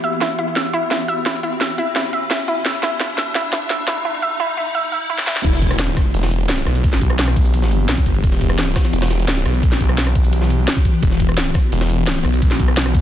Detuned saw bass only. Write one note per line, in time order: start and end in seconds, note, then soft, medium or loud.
5.44 5.95 E1 loud
6.14 6.65 E1 loud
6.67 7.00 B1 loud
7.01 7.87 B1 loud
7.89 8.05 B1 loud
8.06 8.22 G1 loud
8.24 8.74 E1 loud
8.93 9.44 E1 loud
9.46 9.79 B1 loud
9.81 10.66 B1 loud
11.03 11.54 E1 loud
11.72 12.23 E1 loud
12.25 12.58 B1 loud
12.60 13.01 B1 loud